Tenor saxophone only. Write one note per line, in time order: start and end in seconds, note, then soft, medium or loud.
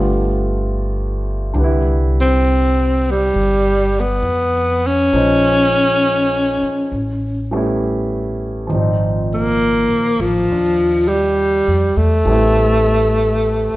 0.00 0.37 A3 medium
2.21 3.12 C4 medium
3.11 4.01 G3 medium
4.00 4.88 B3 medium
4.87 7.53 C#4 medium
9.34 10.22 A#3 medium
10.21 11.10 F3 medium
11.08 11.98 G3 medium
11.97 13.77 A3 medium